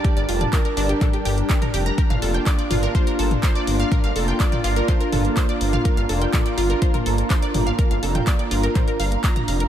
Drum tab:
HH |xxoxxxoxxxoxxxox|xxoxxxoxxxoxxxox|xxoxxxoxxxoxxxox|xxoxxxoxxxoxxxox|
CP |----x---x---x---|----x-------x---|----x---x---x---|----x-------x---|
T2 |---o----o----o--|-o----o----o----|o----o----o----o|----o----o----o-|
BD |o---o---o---o---|o---o---o---o---|o---o---o---o---|o---o---o---o---|

HH |xxoxxxoxxxoxxxox|
CP |----x---x---x---|
T2 |---o----o----o--|
BD |o---o---o---o---|